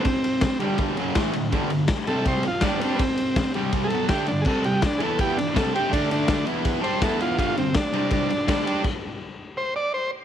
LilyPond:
<<
  \new Staff \with { instrumentName = "Transistor combo organ" } { \time 4/4 \key g \major \tempo 4 = 164 <b c'>4. g8 r2 | r4. a'8 c''8 f'8 d'8 <b c'>8 | <b c'>4. g8 r8 <gis' a'>8 g'8 d'8 | <gis' a'>8 g'8 d'8 <gis' a'>8 g'8 d'8 a'8 g'8 |
d'8 d'4 r4 c''8 a'8 f'8 | f'8 c'8 d'4 d'2 | r2 c''8 d''8 c''8 r8 | }
  \new Staff \with { instrumentName = "Distorted electric guitar" } { \clef bass \time 4/4 \key g \major r4. <g, d g>4 <fis, cis fis>8 <a, e a>8 <d, a,>8 | <g, d g>8 <g, d>8 r8 <c g c'>4 r8 <g, d g>8 <g d' g'>8 | r4. <c g c'>4 <b, fis b>8 <d a d'>8 <g, d>8 | <c g c'>8 <c g>8 r8 <e b e'>4 r8 <c g c'>8 <c' g' c''>8 |
<d a d'>4. <e b e'>4 <g d' g'>8 <e b e'>4 | <g, d g>8 <g, d>8 r8 <c g c'>4 r8 <g, d g>8 <g d' g'>8 | r1 | }
  \new DrumStaff \with { instrumentName = "Drums" } \drummode { \time 4/4 <bd cymr>8 cymr8 <bd cymr sn>8 cymr8 <bd cymr>8 cymr8 <bd cymr sn>8 cymr8 | <bd cymr>8 cymr8 <bd cymr sn>8 cymr8 <bd cymr>8 cymr8 <bd cymr sn>8 cymr8 | <bd cymr>8 cymr8 <bd cymr sn>8 cymr8 <bd cymr>8 cymr8 <bd cymr sn>8 cymr8 | <cymc bd>8 cymr8 <bd cymr sn>8 cymr8 <bd cymr>8 cymr8 <bd cymr sn>8 cymr8 |
<bd cymr>8 cymr8 <bd cymr sn>8 cymr8 <bd cymr>8 cymr8 <bd cymr sn>8 cymr8 | <bd cymr>8 cymr8 <bd cymr sn>8 cymr8 <bd cymr>8 cymr8 <bd cymr sn>8 cymr8 | <cymc bd>4 r4 r4 r4 | }
>>